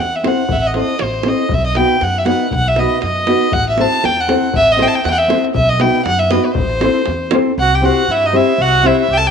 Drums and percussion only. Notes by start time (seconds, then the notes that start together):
0.13 davul high
0.24 davul high
0.38 davul high
0.49 davul low
0.74 davul high
0.88 davul high
0.99 davul high
1.14 davul high
1.23 davul high
1.38 davul high
1.49 davul low
1.75 davul high
2.01 davul high
2.16 davul high
2.26 davul high
2.39 davul high
2.51 davul low
2.76 davul high
2.90 davul high
3.02 davul high
3.16 davul high
3.27 davul high
3.41 davul high
3.52 davul low
3.78 davul high
3.93 davul high
4.04 davul high
4.17 davul high
4.29 davul high
4.44 davul high
4.53 davul low
4.79 davul high
4.94 davul high
5.05 davul high
5.19 davul high
5.30 davul high
5.45 davul high
5.55 davul low
5.80 davul high
5.95 davul high
6.06 davul high
6.20 davul high
6.31 davul high
6.45 davul high
6.55 davul low
6.70 davul high
6.81 davul high
6.94 davul high
7.05 davul high
7.31 davul high